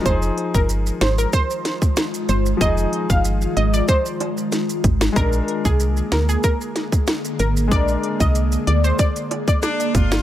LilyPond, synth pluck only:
\new Staff \with { instrumentName = "Synth pluck" } { \time 4/4 \key f \dorian \tempo 4 = 94 c''8 r16 bes'16 r8 c''16 bes'16 c''8. r8. c''16 r16 | ees''8 r16 f''16 r8 ees''16 d''16 c''8. r4 r16 | bes'8 r16 aes'16 r8 bes'16 aes'16 bes'8. r8. bes'16 r16 | d''8 r16 ees''16 r8 d''16 c''16 d''16 r8 d''16 r4 | }